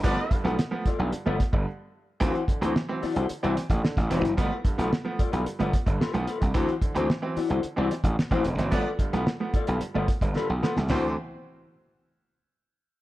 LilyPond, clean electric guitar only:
\new Staff \with { instrumentName = "Clean electric guitar" } { \time 4/4 \key g \major \tempo 4 = 111 <f' a' b'>16 r8 <f' a' b'>16 r8 <f' a' d''>16 <f' a' b'>16 r16 <f' a' d''>16 r4. | <e' fis' c''>16 r8 <e' fis' c''>16 r8 <e' fis' d''>16 <e' fis' c''>16 r16 <e' fis' d''>16 r4 <e' fis' c''>16 r16 | <f' a' b'>16 r8 <f' a' b'>16 r8 <f' a' d''>16 <f' a' b'>16 r16 <f' a' d''>16 r8 <f' a' b'>16 r16 <f' a' b'>16 r16 | <e' fis' c''>16 r8 <e' fis' c''>16 r8 <e' fis' d''>16 <e' fis' c''>16 r16 <e' fis' d''>16 r8. <e' fis' c''>16 r8 |
<f' a' b'>16 r8 <f' a' b'>16 r8 <f' a' d''>16 <f' a' b'>16 r16 <f' a' d''>16 r8 <f' a' b'>16 r16 <f' a' b'>16 r16 | <e' fis' c''>16 r2. r8. | }